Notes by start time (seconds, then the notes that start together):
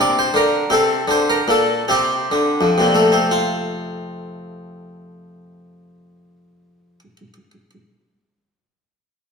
Already playing: D4
0.00 C3 D5
0.19 C5
0.34 D3 A#4
0.70 C3 C4 A4
1.08 D3 C5
1.30 A#4
1.48 A#2 A4
1.88 C3 C4 G4
2.32 D3
2.61 F2
2.78 A#2 C3
2.94 A3
3.12 C4
3.31 F4